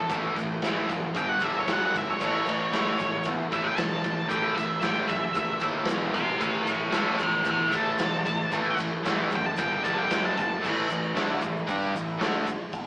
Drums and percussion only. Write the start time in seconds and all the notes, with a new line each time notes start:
0.09 kick, ride, shaker
0.36 ride, shaker
0.62 snare, ride, shaker
0.89 kick, ride, shaker
1.14 kick, ride, shaker
1.40 kick, ride, shaker
1.68 snare, ride, shaker
1.95 kick, ride, shaker
2.20 kick, crash, shaker
2.46 ride, shaker
2.73 snare, ride, shaker
2.98 kick, ride, shaker
3.23 kick, ride, shaker
3.52 kick, ride, shaker
3.77 snare, ride, shaker
4.03 kick, ride, shaker
4.30 kick, ride, shaker
4.57 ride, shaker
4.82 snare, ride, shaker
5.08 kick, ride, shaker
5.35 kick, ride, shaker
5.60 kick, ride, shaker
5.85 snare, ride, shaker
6.14 kick, ride, shaker
6.40 kick, ride, shaker
6.67 ride, shaker
6.92 snare, ride, shaker
7.18 kick, ride, shaker
7.44 kick, ride, shaker
7.71 kick, ride, shaker
7.98 snare, ride, shaker
8.25 kick, ride, shaker
8.51 kick, ride, shaker
8.78 ride, shaker
9.05 snare, ride, shaker
9.31 kick, ride, shaker
9.56 kick, ride, shaker
9.84 kick, ride, shaker
10.11 snare, ride, shaker
10.37 kick, ride, shaker
10.64 kick, crash, shaker
10.89 shaker
11.03 shaker
11.16 snare, open hi-hat, shaker
11.41 kick, shaker
11.57 shaker
11.67 kick, open hi-hat, shaker
11.96 shaker
12.21 snare, open hi-hat, shaker
12.47 kick, shaker
12.72 kick, open hi-hat, shaker